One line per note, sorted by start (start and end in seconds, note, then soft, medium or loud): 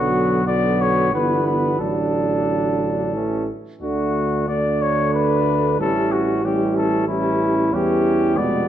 0.00 1.14 B1 medium
0.00 0.42 D3 medium
0.00 0.42 F#3 soft
0.00 0.43 B3 soft
0.00 0.45 F#4 medium
0.46 1.12 D3 soft
0.46 1.11 F#3 soft
0.46 1.11 B3 soft
0.46 0.83 D5 medium
0.81 1.13 C#5 medium
1.12 1.79 G1 soft
1.12 1.79 D3 soft
1.12 1.80 E3 soft
1.12 1.78 B3 soft
1.12 1.46 B4 medium
1.47 1.79 B4 soft
1.79 3.46 A1 soft
1.79 3.16 D3 soft
1.79 3.16 F#3 soft
1.79 3.13 D4 soft
1.79 3.45 A4 soft
3.14 3.49 E3 soft
3.14 3.49 A3 soft
3.14 3.49 C#4 soft
3.81 5.75 D2 soft
3.81 4.45 D3 soft
3.81 4.44 A3 soft
3.81 4.45 D4 soft
3.81 4.44 F#4 medium
4.48 5.77 D3 soft
4.48 5.80 A3 soft
4.48 5.77 D4 soft
4.48 4.83 D5 medium
4.82 5.14 C#5 medium
5.14 5.78 B4 medium
5.79 7.74 A1 soft
5.79 6.42 E3 soft
5.79 6.42 G3 soft
5.79 6.43 C#4 soft
5.79 6.14 A4 medium
6.12 6.47 F#4 medium
6.43 7.06 E3 soft
6.43 7.06 G3 soft
6.43 7.06 C#4 soft
6.43 6.76 G4 soft
6.77 7.07 A4 medium
7.07 7.71 E3 soft
7.07 7.71 G3 soft
7.07 7.71 C#4 soft
7.07 7.75 E4 medium
7.72 8.39 E2 soft
7.72 8.39 E3 soft
7.72 8.38 G3 soft
7.72 8.39 C#4 medium
7.72 8.39 G4 medium
8.37 8.68 F1 soft
8.37 8.68 B2 soft
8.37 8.68 G#3 soft
8.37 8.68 B3 soft
8.37 8.68 D5 medium